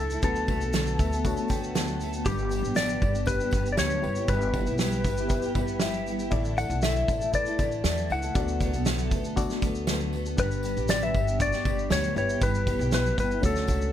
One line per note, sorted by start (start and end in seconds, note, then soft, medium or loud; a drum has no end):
0.00 0.21 C#2 medium
0.00 0.10 D3 medium
0.00 0.11 A3 medium
0.00 0.22 D4 medium
0.00 0.11 E4 medium
0.00 0.25 E4 medium
0.00 0.23 A4 loud
0.00 0.25 A4 medium
0.00 0.08 A4 medium
0.10 0.22 A3 soft
0.10 0.23 E4 soft
0.10 0.23 A4 medium
0.10 shaker medium
0.22 0.61 D2 loud
0.22 0.48 D3 medium
0.22 0.46 F#3 medium
0.22 1.08 A3 medium
0.22 0.47 A3 medium
0.22 1.09 B3 medium
0.22 0.48 B3 medium
0.22 1.09 D4 medium
0.22 1.09 F#4 medium
0.22 0.49 A4 medium
0.22 1.72 A4 medium
0.22 1.09 B4 medium
0.22 kick loud
0.22 shaker medium
0.35 shaker soft
0.47 0.60 F#3 medium
0.47 0.61 A3 medium
0.47 0.61 B3 medium
0.47 0.59 A4 medium
0.47 kick medium
0.47 tambourine soft
0.60 0.96 B1 medium
0.60 0.73 A3 soft
0.60 0.74 B3 medium
0.60 0.73 A4 medium
0.60 shaker medium
0.73 0.99 D3 loud
0.73 0.96 F#3 medium
0.73 0.98 A3 medium
0.73 0.99 B3 medium
0.73 1.00 A4 medium
0.73 snare loud
0.73 tambourine medium
0.73 shaker medium
0.86 shaker medium
0.98 1.34 D2 loud
0.98 1.11 F#3 medium
0.98 1.12 A3 medium
0.98 1.12 B3 medium
0.98 1.10 A4 medium
0.98 1.23 E5 medium
0.98 kick medium
0.98 tambourine soft
0.98 shaker medium
1.11 1.39 A3 medium
1.11 1.36 B3 medium
1.11 1.35 A4 medium
1.11 shaker medium
1.24 2.10 A3 loud
1.24 2.11 B3 loud
1.24 2.11 D4 medium
1.24 2.11 F#4 medium
1.24 2.12 C#5 loud
1.24 1.49 F#5 medium
1.24 kick loud
1.24 tambourine medium
1.24 shaker medium
1.36 1.48 A3 medium
1.36 1.50 B3 medium
1.36 1.49 A4 medium
1.36 shaker soft
1.48 2.22 D2 medium
1.48 1.74 F#3 medium
1.48 1.74 A3 medium
1.48 1.75 B3 medium
1.48 1.76 A4 medium
1.48 1.74 G5 medium
1.48 kick medium
1.48 tambourine medium
1.48 shaker medium
1.63 shaker soft
1.75 2.00 D3 medium
1.75 1.98 F#3 medium
1.75 2.00 A3 loud
1.75 2.01 B3 medium
1.75 2.02 A4 medium
1.75 2.23 A5 medium
1.75 snare loud
1.75 tambourine medium
1.75 shaker medium
1.87 shaker medium
1.99 2.13 F#3 medium
1.99 2.14 A3 medium
1.99 2.14 B3 medium
1.99 2.11 A4 medium
1.99 tambourine soft
1.99 shaker soft
2.12 2.26 A3 soft
2.12 2.25 B3 medium
2.12 2.25 A4 medium
2.12 shaker medium
2.24 2.61 G1 loud
2.24 2.51 G2 medium
2.24 2.51 D3 medium
2.24 2.48 G3 medium
2.24 2.49 B3 medium
2.24 3.11 D4 medium
2.24 2.51 D4 medium
2.24 3.12 G4 medium
2.24 2.78 G4 loud
2.24 2.52 G4 medium
2.24 3.12 B4 medium
2.24 kick loud
2.24 tambourine soft
2.24 shaker medium
2.38 shaker soft
2.49 2.63 G3 medium
2.49 2.64 B3 medium
2.49 2.62 D4 medium
2.49 2.61 G4 medium
2.49 tambourine soft
2.49 shaker medium
2.62 2.98 A1 medium
2.62 2.75 G3 soft
2.62 2.76 B3 medium
2.62 2.76 D4 medium
2.62 2.76 G4 medium
2.62 shaker medium
2.75 3.01 G2 medium
2.75 3.02 D3 medium
2.75 2.98 G3 loud
2.75 2.99 B3 medium
2.75 3.01 D4 loud
2.75 3.02 G4 medium
2.75 3.29 D5 loud
2.75 snare loud
2.75 tambourine medium
2.75 shaker medium
2.89 shaker medium
3.00 3.37 G1 loud
3.00 3.14 G3 medium
3.00 3.14 B3 medium
3.00 3.12 D4 medium
3.00 3.11 G4 medium
3.00 kick loud
3.00 tambourine soft
3.12 3.41 G3 soft
3.12 3.40 B3 soft
3.12 3.39 D4 medium
3.12 3.38 G4 medium
3.12 shaker medium
3.26 4.03 D4 medium
3.26 4.02 G4 medium
3.26 3.68 B4 loud
3.26 4.02 B4 medium
3.26 kick loud
3.26 tambourine medium
3.26 shaker medium
3.40 3.51 G3 soft
3.40 3.52 B3 medium
3.40 3.53 D4 medium
3.40 3.53 G4 medium
3.40 shaker soft
3.51 3.76 G1 medium
3.51 3.78 G3 medium
3.51 3.78 B3 medium
3.51 3.78 D4 medium
3.51 kick medium
3.51 tambourine medium
3.51 shaker medium
3.56 3.79 G4 medium
3.66 shaker soft
3.72 3.78 D5 medium
3.77 4.05 D2 medium
3.77 4.03 G2 medium
3.77 4.04 D3 medium
3.77 4.01 G3 medium
3.77 4.02 B3 medium
3.77 4.04 D4 medium
3.77 4.05 G4 medium
3.77 4.31 C#5 loud
3.77 snare loud
3.77 tambourine medium
3.77 shaker medium
3.90 shaker medium
4.01 4.27 G1 medium
4.01 4.16 G3 medium
4.01 4.16 B3 medium
4.01 4.89 E4 medium
4.01 4.17 E4 medium
4.01 4.89 G4 medium
4.01 4.90 B4 medium
4.01 tambourine soft
4.06 4.15 G4 medium
4.15 4.29 E4 soft
4.15 4.29 G4 soft
4.15 shaker medium
4.20 4.28 B3 soft
4.28 4.64 G1 loud
4.28 4.53 G3 medium
4.28 4.54 B3 medium
4.28 4.55 E4 medium
4.28 4.55 G4 loud
4.28 5.77 B4 medium
4.28 kick loud
4.28 tambourine soft
4.28 shaker medium
4.41 shaker soft
4.54 4.67 G3 medium
4.54 4.68 B3 medium
4.54 4.68 E4 medium
4.54 kick medium
4.54 tambourine soft
4.58 4.66 G4 medium
4.66 5.02 B1 medium
4.66 4.81 E4 soft
4.66 4.80 G4 medium
4.66 shaker medium
4.71 4.81 B3 medium
4.78 5.03 G3 medium
4.78 snare loud
4.78 tambourine medium
4.78 shaker medium
4.82 5.05 B3 medium
4.82 5.06 E4 medium
4.82 5.07 G4 loud
4.92 shaker medium
5.04 5.40 G1 loud
5.04 5.18 G3 medium
5.04 5.18 B3 medium
5.04 5.18 E4 medium
5.04 5.17 G4 medium
5.04 kick medium
5.04 tambourine soft
5.04 shaker medium
5.17 5.45 B3 soft
5.17 5.44 E4 medium
5.17 5.41 G4 medium
5.17 shaker medium
5.28 6.15 E4 medium
5.28 6.16 G4 medium
5.28 6.16 B4 loud
5.28 kick loud
5.28 tambourine medium
5.28 shaker medium
5.42 5.55 E4 medium
5.42 5.56 G4 medium
5.42 shaker soft
5.46 5.54 B3 medium
5.55 6.28 G1 medium
5.55 5.79 G3 medium
5.55 5.79 B3 medium
5.55 5.80 E4 medium
5.55 5.81 G4 medium
5.55 5.79 B5 medium
5.55 kick loud
5.55 tambourine medium
5.68 shaker soft
5.80 6.05 G3 medium
5.80 6.06 B3 medium
5.80 6.07 E4 medium
5.80 6.07 G4 medium
5.80 6.28 E5 medium
5.80 snare loud
5.80 tambourine medium
5.80 shaker medium
5.93 shaker medium
6.06 6.19 G3 medium
6.06 6.20 B3 medium
6.06 6.19 E4 medium
6.06 6.17 G4 medium
6.06 shaker soft
6.19 6.32 B3 soft
6.19 6.32 E4 medium
6.19 6.32 G4 medium
6.19 shaker medium
6.31 6.67 A1 loud
6.31 6.57 A2 medium
6.31 6.54 D3 medium
6.31 6.56 A3 medium
6.31 7.17 E4 loud
6.31 6.57 E4 loud
6.31 7.18 A4 medium
6.31 6.58 A4 medium
6.31 7.18 D5 loud
6.31 kick loud
6.31 shaker medium
6.45 shaker medium
6.55 6.69 D3 medium
6.55 6.70 A3 medium
6.55 6.70 E4 medium
6.55 6.68 A4 medium
6.55 6.84 F#5 loud
6.55 tambourine soft
6.55 shaker medium
6.69 7.05 B1 loud
6.69 6.83 E4 soft
6.69 6.82 A4 medium
6.69 shaker medium
6.73 6.83 A3 medium
6.82 7.08 A2 medium
6.82 7.07 D3 loud
6.82 7.08 A3 medium
6.82 7.08 E4 loud
6.82 7.09 A4 loud
6.82 7.35 E5 medium
6.82 snare loud
6.82 tambourine medium
6.82 shaker medium
6.96 shaker medium
7.08 7.43 A1 medium
7.08 7.21 D3 medium
7.08 7.21 A3 medium
7.08 7.20 E4 medium
7.08 7.18 A4 medium
7.08 kick medium
7.08 tambourine soft
7.08 shaker medium
7.19 7.47 A3 soft
7.19 7.46 E4 soft
7.19 7.44 A4 medium
7.19 shaker medium
7.32 8.19 E4 medium
7.32 8.19 A4 medium
7.32 8.20 B4 medium
7.32 8.13 D5 loud
7.32 kick medium
7.32 tambourine medium
7.32 shaker medium
7.45 7.59 A3 medium
7.45 7.59 E4 medium
7.45 7.58 A4 medium
7.45 shaker soft
7.58 7.83 A1 medium
7.58 7.83 D3 medium
7.58 7.84 A3 medium
7.58 7.84 E4 medium
7.58 7.84 A4 medium
7.58 kick medium
7.58 tambourine medium
7.58 shaker medium
7.72 shaker soft
7.84 8.08 E2 loud
7.84 8.09 A2 medium
7.84 8.07 D3 medium
7.84 8.08 A3 medium
7.84 8.09 E4 medium
7.84 8.10 A4 medium
7.84 snare loud
7.84 tambourine medium
7.84 shaker medium
7.97 shaker medium
8.08 8.33 C#2 medium
8.08 8.22 D3 medium
8.08 8.22 A3 medium
8.08 8.22 E4 medium
8.08 8.21 A4 medium
8.08 tambourine soft
8.12 9.08 F#5 medium
8.22 8.35 A3 soft
8.22 8.36 E4 medium
8.22 8.35 A4 medium
8.22 shaker medium
8.34 8.75 D2 loud
8.34 8.60 D3 medium
8.34 8.60 F#3 medium
8.34 8.61 A3 medium
8.34 9.20 B3 medium
8.34 8.62 B3 medium
8.34 9.21 D4 medium
8.34 9.21 F#4 medium
8.34 9.21 A4 medium
8.34 8.62 A4 medium
8.34 9.21 D5 loud
8.34 kick loud
8.34 tambourine soft
8.34 shaker medium
8.48 shaker medium
8.61 8.73 F#3 medium
8.61 8.74 A3 medium
8.61 8.74 B3 medium
8.61 8.72 A4 medium
8.61 kick medium
8.61 tambourine soft
8.61 shaker medium
8.73 9.09 B1 medium
8.73 8.86 A3 medium
8.73 8.86 B3 medium
8.73 8.86 A4 medium
8.73 shaker medium
8.85 9.11 D3 loud
8.85 9.09 F#3 medium
8.85 9.11 A3 loud
8.85 9.12 B3 loud
8.85 9.12 A4 loud
8.85 snare loud
8.85 tambourine medium
8.85 shaker medium
8.98 shaker medium
9.10 9.46 D2 medium
9.10 9.23 F#3 medium
9.10 9.24 A3 medium
9.10 9.23 B3 medium
9.10 9.22 A4 medium
9.10 kick medium
9.10 tambourine soft
9.10 shaker medium
9.23 9.50 A3 medium
9.23 9.50 B3 medium
9.23 9.49 A4 medium
9.23 shaker medium
9.36 10.22 B3 loud
9.36 10.22 D4 medium
9.36 10.22 F#4 loud
9.36 10.23 A4 loud
9.36 10.23 D5 loud
9.36 kick medium
9.36 tambourine medium
9.36 shaker medium
9.50 9.63 A3 medium
9.50 9.63 B3 medium
9.50 9.62 A4 medium
9.50 snare soft
9.50 shaker soft
9.62 10.34 D2 loud
9.62 9.88 F#3 medium
9.62 9.88 A3 medium
9.62 9.89 B3 medium
9.62 kick medium
9.62 tambourine medium
9.62 shaker medium
9.66 9.89 A4 medium
9.75 shaker soft
9.87 10.13 D3 medium
9.87 10.12 F#3 medium
9.87 10.14 A3 medium
9.87 10.14 B3 loud
9.87 10.14 A4 medium
9.87 snare loud
9.87 tambourine medium
9.87 shaker medium
10.00 shaker medium
10.13 10.26 F#3 medium
10.13 10.26 A3 medium
10.13 10.27 B3 medium
10.13 tambourine soft
10.17 10.25 A4 medium
10.26 10.40 A3 soft
10.26 10.39 B3 medium
10.26 10.39 A4 medium
10.26 shaker medium
10.37 10.73 G1 loud
10.37 10.64 G2 medium
10.37 10.64 D3 medium
10.37 10.62 G3 medium
10.37 10.64 B3 medium
10.37 11.23 D4 medium
10.37 10.65 D4 medium
10.37 11.24 G4 medium
10.37 10.65 G4 medium
10.37 11.24 B4 medium
10.37 10.91 B4 medium
10.37 kick loud
10.37 tambourine soft
10.37 shaker medium
10.51 shaker medium
10.63 10.76 G3 medium
10.63 10.77 B3 medium
10.63 10.77 D4 medium
10.63 tambourine soft
10.63 shaker medium
10.67 10.76 G4 medium
10.77 11.11 A1 medium
10.77 10.91 G3 medium
10.77 10.90 B3 medium
10.77 10.90 D4 medium
10.77 10.89 G4 medium
10.77 shaker soft
10.88 11.15 G2 medium
10.88 11.15 D3 medium
10.88 11.13 G3 loud
10.88 11.15 B3 loud
10.88 11.02 D5 loud
10.88 snare loud
10.88 tambourine medium
10.88 shaker medium
10.92 11.15 D4 medium
10.92 11.16 G4 loud
11.02 11.41 E5 loud
11.02 shaker medium
11.14 11.49 G1 loud
11.14 11.27 G3 medium
11.14 11.28 B3 medium
11.14 11.27 D4 medium
11.14 11.26 G4 medium
11.14 kick medium
11.14 tambourine soft
11.27 11.54 G3 soft
11.27 11.53 B3 soft
11.27 11.53 D4 medium
11.27 11.52 G4 medium
11.27 shaker medium
11.39 12.15 D4 medium
11.39 12.15 G4 medium
11.39 11.92 D5 loud
11.39 12.16 C#6 medium
11.39 kick loud
11.39 tambourine medium
11.39 shaker medium
11.52 11.64 G3 medium
11.52 11.65 B3 medium
11.52 11.66 D4 medium
11.52 11.65 G4 medium
11.52 snare soft
11.52 shaker soft
11.65 11.89 G1 medium
11.65 11.90 G3 medium
11.65 11.91 B3 medium
11.65 11.91 D4 medium
11.65 11.91 G4 medium
11.65 kick loud
11.65 tambourine soft
11.79 shaker soft
11.90 12.14 D2 loud
11.90 12.16 G2 medium
11.90 12.16 D3 medium
11.90 12.13 G3 medium
11.90 12.15 B3 medium
11.90 12.17 D4 medium
11.90 12.17 G4 medium
11.90 12.17 C#5 loud
11.90 snare loud
11.90 tambourine medium
11.90 shaker medium
12.03 shaker medium
12.14 12.39 G1 loud
12.14 12.28 G3 medium
12.14 12.29 B3 medium
12.14 13.02 E4 medium
12.14 12.29 E4 medium
12.14 13.02 G4 medium
12.14 12.28 G4 medium
12.14 13.03 B4 medium
12.14 12.40 C#5 medium
12.14 shaker soft
12.29 12.42 B3 soft
12.29 12.42 E4 soft
12.29 12.41 G4 medium
12.29 shaker medium
12.41 12.76 G1 loud
12.41 12.66 G3 medium
12.41 12.67 B3 medium
12.41 12.68 E4 medium
12.41 12.68 G4 medium
12.41 12.93 B4 loud
12.41 kick loud
12.41 tambourine soft
12.41 shaker medium
12.54 shaker medium
12.67 12.79 G3 medium
12.67 12.80 B3 medium
12.67 12.81 E4 medium
12.67 12.79 G4 medium
12.67 kick medium
12.67 tambourine soft
12.67 shaker medium
12.79 13.18 B1 loud
12.79 12.93 E4 medium
12.79 12.92 G4 medium
12.79 shaker medium
12.84 12.92 B3 soft
12.91 13.17 G3 medium
12.91 13.18 B3 loud
12.91 13.19 E4 medium
12.91 13.19 G4 medium
12.91 13.19 B4 medium
12.91 snare loud
12.91 tambourine medium
12.91 shaker medium
13.06 shaker medium
13.18 13.41 G1 loud
13.18 13.31 G3 medium
13.18 13.31 B3 medium
13.18 13.31 E4 medium
13.18 13.29 G4 medium
13.18 13.42 B4 medium
13.18 kick medium
13.18 tambourine soft
13.18 shaker medium
13.31 13.44 B3 soft
13.31 13.44 E4 soft
13.31 13.43 G4 medium
13.31 shaker medium
13.40 13.66 D2 loud
13.40 13.56 D3 medium
13.40 13.56 F#3 medium
13.40 13.93 A3 medium
13.40 13.93 C#4 medium
13.40 13.93 D4 medium
13.40 13.93 F#4 medium
13.40 13.93 C#5 loud
13.40 kick loud
13.40 tambourine medium
13.40 shaker medium
13.44 13.56 A3 medium
13.44 13.56 C#4 medium
13.44 13.55 F#4 medium
13.44 13.93 A4 medium
13.56 13.68 A3 soft
13.56 13.69 C#4 medium
13.56 13.68 F#4 medium
13.56 snare soft
13.56 shaker medium
13.67 13.93 C#2 medium
13.67 13.92 F#3 medium
13.67 13.93 A3 medium
13.67 13.93 C#4 medium
13.67 13.93 F#4 medium
13.67 kick medium
13.67 tambourine medium
13.67 shaker medium
13.81 shaker soft